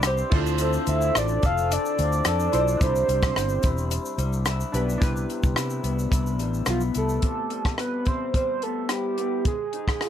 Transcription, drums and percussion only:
0.03 cross-stick, closed hi-hat, shaker
0.18 shaker
0.31 kick, crash
0.46 shaker
0.58 closed hi-hat, shaker
0.73 shaker
0.87 closed hi-hat, shaker
1.01 shaker
1.15 cross-stick, closed hi-hat, shaker
1.28 shaker
1.43 kick, closed hi-hat, shaker
1.58 shaker
1.72 closed hi-hat, shaker
1.85 shaker
1.99 closed hi-hat, shaker
2.12 shaker
2.25 cross-stick, closed hi-hat, shaker
2.40 shaker
2.53 closed hi-hat, shaker
2.68 shaker
2.81 kick, closed hi-hat, shaker
2.96 shaker
3.09 closed hi-hat, shaker
3.23 kick, cross-stick, shaker
3.36 cross-stick, closed hi-hat, shaker
3.49 shaker
3.63 kick, closed hi-hat, shaker
3.78 shaker
3.91 closed hi-hat, shaker
4.06 shaker
4.19 closed hi-hat, shaker
4.33 shaker
4.46 cross-stick, closed hi-hat, shaker
4.60 shaker
4.74 closed hi-hat, shaker
4.89 shaker
5.02 kick, closed hi-hat, shaker
5.17 shaker
5.30 closed hi-hat, shaker
5.43 kick, shaker
5.56 cross-stick, closed hi-hat, shaker
5.70 shaker
5.84 closed hi-hat, shaker
5.99 shaker
6.12 kick, closed hi-hat, shaker
6.26 shaker
6.39 closed hi-hat, shaker
6.54 shaker
6.66 cross-stick, closed hi-hat, shaker
6.81 shaker
6.95 closed hi-hat, shaker
7.09 shaker
7.22 kick, closed hi-hat
7.50 closed hi-hat
7.65 kick, cross-stick
7.78 cross-stick, closed hi-hat
8.05 kick, closed hi-hat
8.34 kick, closed hi-hat
8.62 closed hi-hat
8.89 cross-stick, closed hi-hat
9.18 closed hi-hat
9.45 kick, closed hi-hat
9.73 closed hi-hat
9.88 kick, cross-stick
10.01 cross-stick, closed hi-hat

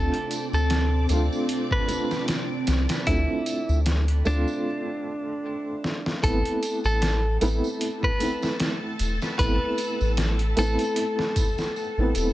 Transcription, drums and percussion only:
0.14 closed hi-hat
0.31 closed hi-hat, tambourine
0.53 tambourine
0.70 snare, closed hi-hat, tambourine
1.09 closed hi-hat, tambourine
1.32 tambourine
1.49 closed hi-hat, tambourine
1.71 kick
1.89 closed hi-hat, tambourine
2.11 snare, tambourine
2.28 snare, closed hi-hat, tambourine
2.67 snare, closed hi-hat, tambourine
2.89 snare, closed hi-hat, tambourine
3.07 kick, closed hi-hat, tambourine
3.46 closed hi-hat, tambourine
3.69 tambourine
3.86 snare, closed hi-hat, tambourine
4.08 closed hi-hat
4.25 tambourine
4.48 tambourine
5.84 snare
6.06 snare
6.23 kick, closed hi-hat, tambourine
6.45 closed hi-hat
6.62 closed hi-hat, tambourine
6.85 tambourine
7.02 snare, closed hi-hat, tambourine
7.41 closed hi-hat, tambourine
7.64 tambourine
7.81 closed hi-hat, tambourine
8.03 kick
8.20 closed hi-hat, tambourine
8.42 snare, tambourine
8.60 snare, closed hi-hat, tambourine
8.99 closed hi-hat, tambourine
9.22 snare, tambourine
9.39 kick, closed hi-hat, tambourine
9.78 closed hi-hat, tambourine
10.01 tambourine
10.17 snare, closed hi-hat, tambourine
10.39 closed hi-hat
10.57 closed hi-hat, tambourine
10.79 closed hi-hat, tambourine
10.96 closed hi-hat, tambourine
11.19 snare
11.36 kick, closed hi-hat, tambourine
11.58 snare, tambourine
11.76 tambourine
12.15 closed hi-hat, tambourine

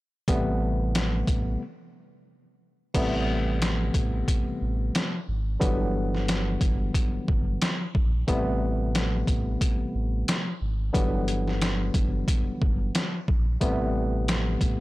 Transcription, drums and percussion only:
0.28 kick, closed hi-hat
0.95 snare, closed hi-hat
1.27 kick, closed hi-hat
2.95 kick, closed hi-hat, crash
3.62 snare, closed hi-hat
3.94 kick, closed hi-hat
4.28 kick, closed hi-hat
4.95 snare, closed hi-hat
5.61 kick, closed hi-hat
6.14 snare
6.28 snare, closed hi-hat
6.61 kick, closed hi-hat
6.94 kick, closed hi-hat
7.28 kick
7.62 snare, closed hi-hat
7.95 kick
8.28 kick, closed hi-hat
8.95 snare, closed hi-hat
9.27 kick, closed hi-hat
9.61 kick, closed hi-hat
10.28 snare, closed hi-hat
10.95 kick, closed hi-hat
11.28 closed hi-hat
11.48 snare
11.62 snare, closed hi-hat
11.94 kick, closed hi-hat
12.28 kick, closed hi-hat
12.62 kick
12.95 snare, closed hi-hat
13.28 kick
13.61 kick, closed hi-hat
14.28 snare, closed hi-hat
14.61 kick, closed hi-hat

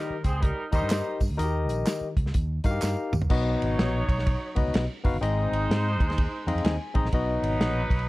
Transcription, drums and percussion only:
0.24 kick, closed hi-hat, tambourine
0.42 kick, closed hi-hat
0.72 kick, closed hi-hat, tambourine
0.90 snare, clap, closed hi-hat, tambourine
1.20 kick, open hi-hat, tambourine
1.39 closed hi-hat, tambourine
1.69 closed hi-hat, tambourine
1.86 snare, clap, closed hi-hat, tambourine
2.17 kick, closed hi-hat
2.26 snare
2.34 kick, closed hi-hat, tambourine
2.64 kick, closed hi-hat, tambourine
2.82 snare, clap, tambourine
3.13 mid tom, tambourine
3.22 floor tom
3.30 kick, crash
3.62 ride
3.79 snare, ride
4.09 kick, ride
4.19 snare
4.27 kick, ride
4.56 kick, ride
4.74 snare, ride
5.05 kick, open hi-hat, ride
5.23 hi-hat pedal, ride
5.53 ride
5.71 snare, ride
6.00 kick, ride
6.10 snare, ride
6.18 kick, ride
6.48 ride
6.58 ride
6.65 snare, ride
6.95 kick, ride
7.05 snare
7.12 kick, ride
7.44 ride
7.61 snare, ride
7.90 kick, ride
7.99 ride

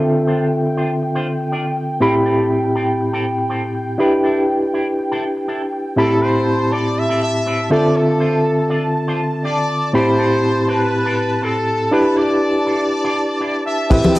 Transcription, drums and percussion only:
13.91 kick, closed hi-hat, crash, maracas
14.03 high conga, maracas
14.15 open hi-hat, muted conga, maracas

